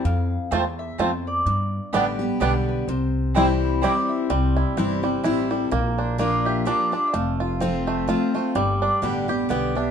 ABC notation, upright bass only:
X:1
M:3/4
L:1/8
Q:"Swing" 1/4=127
K:C
V:1 name="Upright bass" clef=bass
F,,2 E,,2 F,,2 | G,,2 A,,,2 B,,,2 | C,,6 | C,,2 G,,,2 A,,,2 |
_B,,,6 | F,,,6 | G,,,2 A,,,2 B,,,2 |]